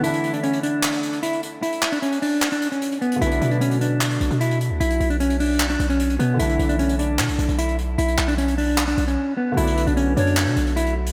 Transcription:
<<
  \new Staff \with { instrumentName = "Pan flute" } { \time 4/4 \key b \minor \tempo 4 = 151 r1 | r1 | r1 | r1 |
r1 | r1 | r4. cis''8 r2 | }
  \new Staff \with { instrumentName = "Clean electric guitar" } { \time 4/4 \key b \minor e'8. d'16 cis'8 d'4. e'8 r8 | e'8. d'16 cis'8 d'8. d'8 cis'8. b8 | e'8. d'16 cis'8 d'4. e'8 r8 | e'8. d'16 cis'8 d'8. d'8 cis'8. b8 |
e'8. d'16 cis'8 d'4. e'8 r8 | e'8. d'16 cis'8 d'8. d'8 cis'8. b8 | e'8. d'16 cis'8 d'4. e'8 r8 | }
  \new Staff \with { instrumentName = "Felt piano" } { \time 4/4 \key b \minor <d e a d' e'>1~ | <d e a d' e'>1 | <d fis a b d'>1~ | <d fis a b d'>1 |
<d e a d' e'>1~ | <d e a d' e'>1 | <d fis a b d'>1 | }
  \new Staff \with { instrumentName = "808-style bass" } { \clef bass \time 4/4 \key b \minor r1 | r1 | b,,8 b,2 b,,16 b,4 d,16 | b,,8 b,,2 b,,4 b,8 |
b,,8 b,,4. b,16 b,,16 b,,16 b,,4~ b,,16 | b,,8 b,,2 b,,8 r4 | b,,8. b,,8. fis,8. b,16 b,,4. | }
  \new DrumStaff \with { instrumentName = "Drums" } \drummode { \time 4/4 hh16 hh16 hh16 hh16 hh16 hh16 hh8 <hc hh>16 hh16 hh16 hh16 hh16 hh16 hh8 | hh16 hh16 <hc hh>16 hh16 hh16 hh16 hho8 <hc hh>16 hh16 hh16 hh16 hh16 hh16 hh16 hh16 | hh16 hh16 hh16 hh16 hh16 hh16 hh8 <hc hh>16 hh16 hh16 hh16 hh16 hh16 hh8 | hh16 hh16 hh16 hh16 hh16 hh16 hho8 <hc hh>16 hh16 hh16 hh16 hh16 hh16 hh8 |
hh16 hh16 hh16 hh16 hh16 hh16 hh8 <hc hh>16 hh16 hh16 hh16 hh16 hh16 hh8 | hh16 hh16 <hc hh>16 hh16 hh16 hh16 hho8 <hc hh>16 hh16 hh16 hh16 r4 | hh16 hh16 hh16 hh16 hh8 hh16 hh16 <hc hh>16 hh16 hh16 hh16 hh16 hh8 hh16 | }
>>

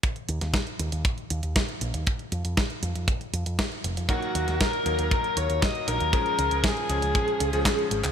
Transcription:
<<
  \new Staff \with { instrumentName = "Lead electric guitar" } { \time 4/4 \key ees \minor \tempo 4 = 118 r1 | r1 | ges'4 bes'4 bes'8 des''8 ees''8 bes'8 | bes'4 aes'2~ aes'8 r8 | }
  \new Staff \with { instrumentName = "Electric grand piano" } { \time 4/4 \key ees \minor r1 | r1 | <ges bes ees' bes'>4. <ges bes ees' bes'>2 <ges bes ees' bes'>8 | <f aes des' aes'>4. <f aes des' aes'>4~ <f aes des' aes'>16 <f aes des' aes'>4~ <f aes des' aes'>16 | }
  \new Staff \with { instrumentName = "Picked electric bass" } { \clef bass \time 4/4 \key ees \minor r8 ees,16 ees,16 r8 ees,16 ees,16 r8 ees,16 ees,16 r8 bes,,16 ees,16 | r8 f,16 f,16 r8 f,16 f,16 r8 f,16 f,16 r8 f,,16 f,16 | r8 ees,16 ees,16 r8 ees,16 ees,16 r8 ees,16 ees,16 r8 bes,,16 ees,16 | r8 des,16 des,16 r8 des,16 des,16 r8 des,16 des,16 r8 aes,,16 des,16 | }
  \new DrumStaff \with { instrumentName = "Drums" } \drummode { \time 4/4 <hh bd>16 hh16 hh16 <hh sn>16 <hh bd sn>16 hh16 hh16 hh16 <hh bd>16 hh16 hh16 hh16 <hh bd sn>16 hh16 hh16 hh16 | <hh bd>16 hh16 hh16 hh16 <hh bd sn>16 hh16 hh16 hh16 <hh bd>16 hh16 hh16 hh16 <hh bd sn>16 hh16 hh16 hh16 | <hh bd>16 hh16 hh16 <hh sn>16 <hh bd sn>16 hh16 hh16 hh16 <hh bd>16 hh16 hh16 hh16 <hh bd sn>16 hh16 hh16 hh16 | <hh bd>16 hh16 hh16 hh16 <hh bd sn>16 hh16 hh16 hh16 <hh bd>16 hh16 hh16 hh16 <hc hh bd sn>16 hh16 hh16 <hc hh>16 | }
>>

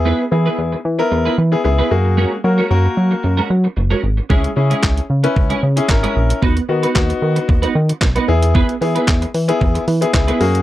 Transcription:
<<
  \new Staff \with { instrumentName = "Clean electric guitar" } { \time 4/4 \key e \lydian \tempo 4 = 113 <b e' gis' b'>16 r8 <b e' gis' b'>16 r4 r16 <b e' gis' b'>16 r8. <b e' gis' b'>16 r8 | <gis cis' fis' ais'>16 r8 <gis cis' fis' ais'>16 r4 r16 <gis cis' fis' ais'>16 r8. <gis cis' fis' ais'>16 r8 | <gis cis' e' gis'>16 r8 <gis cis' e' gis'>16 r4 r16 <gis cis' e' gis'>16 r8. <gis cis' e' gis'>16 r8 | <b dis' fis' b'>16 r8 <b dis' fis' b'>16 r4 r16 <b dis' fis' b'>16 r8. <b dis' fis' b'>16 r8 |
<b e' gis' b'>16 r8 <b e' gis' b'>16 r2 r16 <b e' gis' b'>16 r8 | }
  \new Staff \with { instrumentName = "Grand piano" } { \time 4/4 \key e \lydian <b e' gis'>16 r16 <b e' gis'>8. r8 <b e' ais'>8. r16 <b e' gis'>16 <b e' gis'>8 <ais fis' gis'>8~ | <ais fis' gis'>16 r16 <ais fis' ais'>16 r16 <ais fis' ais'>4~ <ais fis' ais'>16 r4. r16 | <cis' e' gis'>16 r16 <cis' e' gis'>8. r8 <cis' e' b'>8. r16 <cis' e' gis'>16 <cis' e' ais'>4 | r8 <b dis' fis'>16 r16 <b dis' fis'>4~ <b dis' fis'>16 r4 r16 <b e' gis'>8~ |
<b e' gis'>16 r16 <b e' gis'>8. r8 <b e' gis'>8. r16 <b e' gis'>16 <b e' gis'>8 <ais fis' gis'>8 | }
  \new Staff \with { instrumentName = "Analog synth bass" } { \clef bass \time 4/4 \key e \lydian e,8 e8 e,8 e8 e,8 e8 cis,8 fis,8~ | fis,8 fis8 fis,8 fis8 fis,8 fis8 fis,,8 gis,,8 | cis,8 cis8 cis,8 cis8 cis,8 cis8 gis,,8 ais,,8 | dis,8 dis8 dis,8 dis8 dis,8 dis8 b,,8 e,8~ |
e,8 e8 e,8 e8 e,8 e8 cis,8 fis,8 | }
  \new DrumStaff \with { instrumentName = "Drums" } \drummode { \time 4/4 r4 r4 r4 r4 | r4 r4 r4 r4 | bd16 hh8 hh16 <hc bd sn>16 hh8 hh16 bd16 hh8 hh16 <hc bd sn>16 hh8 hh16 | bd16 hh8 hh16 <hc bd sn>16 hh8 hh16 bd16 hh8 hh16 <hc bd sn>16 hh8 hh16 |
bd16 hh16 hho16 hh16 <hc bd sn>16 hh16 hho16 hh16 bd16 hh16 hho16 hh16 <hc bd sn>16 hh16 hho16 hh16 | }
>>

